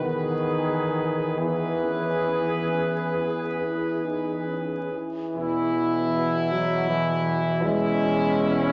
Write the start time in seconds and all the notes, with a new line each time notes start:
0.02 E2 D#3 B3 G#4 B4
1.39 E3 B3 G#4 B4
1.83 C#4
2.28 B3
2.73 C#4
3.18 B3
3.62 E4
4.04 D#4
4.48 C#4
4.92 E3
5.36 E2 B2 E4
6.52 F#3
6.90 E3
7.65 B2 G#3 C#4 E4